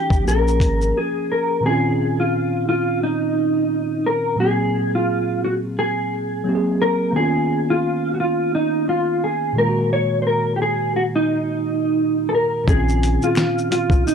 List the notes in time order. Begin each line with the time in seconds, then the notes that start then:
Already playing: E3 C#4 D#4 G4
0.10 G1, kick, shaker
0.22 F3 A#3
0.27 A#1 C4 A#4, shaker
0.32 C#4 G#4
0.48 shaker
0.60 G#1, kick, closed hi-hat, shaker
0.81 shaker
0.97 G#4
1.32 A#4
1.61 A#2 D#3
1.65 C4 C#4 G#4
1.70 F4
2.20 F4
2.69 F4
3.03 D#4
4.06 A#4
4.36 A#2 F#3
4.40 A#3 C4 G#4
4.45 G#4
4.95 F4
5.44 F#4
5.79 G#4
6.44 F#3 A#3 C4
6.49 G4
6.55 G#4
6.82 A#4
7.10 D#3 A#3
7.15 B3 C#4 G#4
7.19 F4
7.70 F4
8.14 F#4
8.20 F4
8.55 D#4
8.89 F4
9.24 G#4
9.53 A#2 D#3
9.57 G#3 A#3 A#4
9.62 F4
9.69 F#4
9.93 C#5
10.22 C5
10.27 A#4
10.56 G4
10.62 G#4
10.96 F#4
11.16 D#4
12.29 A4
12.35 A#4
12.64 A#2 D#3, kick
12.68 A#1 C4 C#4 G#4, shaker
12.74 F4
12.89 shaker
13.03 closed hi-hat, shaker
13.22 F4, shaker
13.35 finger snap, snare, shaker
13.58 shaker
13.72 F4, closed hi-hat, shaker
13.90 C2, kick, shaker
14.07 D#4, shaker